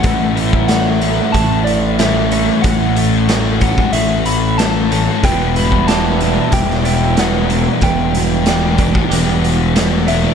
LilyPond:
<<
  \new Staff \with { instrumentName = "Soft synth lead" } { \time 4/4 \key a \mixolydian \tempo 4 = 93 fis''4 fis''4 a''8 d''8 e''4 | fis''4 r8 fis''8 e''8 b''8 a''4 | g''8 b''8 a''4 g''8 g''8 fis''4 | g''2. r8 e''8 | }
  \new Staff \with { instrumentName = "Clean electric guitar" } { \time 4/4 \key a \mixolydian e8 a8 fis'4 fis'8 a8 e8 cis'8 | e8 a8 fis'8 cis'8 fis'8 a8 e8 cis'8 | b8 b8 g'8 d'8 g'8 b8 b8 d'8 | b8 b8 g'8 d'8 g'8 b8 b8 d'8 | }
  \new Staff \with { instrumentName = "Overdriven electric guitar" } { \clef bass \time 4/4 \key a \mixolydian <a, e a cis' e'>1~ | <a, e a cis' e'>1 | <e, b, e g b e'>1~ | <e, b, e g b e'>1 | }
  \new Staff \with { instrumentName = "Distorted electric guitar" } { \clef bass \time 4/4 \key a \mixolydian <a, e a>8 <e a>8 <a, e a>8 <e a>4. <a, e a>8 <e a>8 | <a, e a>8 <e a>8 <a, e a>8 <e a>4. <a, e a>8 <e a>8 | <e, b, e>8 <b, e>8 <e, b, e>8 <b, e>4. <e, b, e>8 <b, e>8 | <e, b, e>8 <b, e>8 <e, b, e>8 <b, e>4. <e, b, e>8 <b, e>8 | }
  \new Staff \with { instrumentName = "Fingered electric bass" } { \clef bass \time 4/4 \key a \mixolydian a,,2 a,,2 | a,,2 a,,2 | e,,2 e,,2 | e,,2 e,,2 | }
  \new DrumStaff \with { instrumentName = "Drums" } \drummode { \time 4/4 <hh bd>8 hh16 bd16 <hh sn>8 hh8 <hh bd>8 hh8 <hh sn>8 hh8 | <hh bd>8 hh8 <hh sn>8 <hh bd>16 bd16 hh8 hh8 <hh sn>8 hh8 | <hh bd>8 hh16 bd16 <hh sn>8 hh8 <hh bd>16 sn16 hh8 <hh sn>8 hh8 | <hh bd>8 hh8 <hh sn>8 <hh bd>16 bd16 hh8 hh8 <hh sn>8 hh8 | }
>>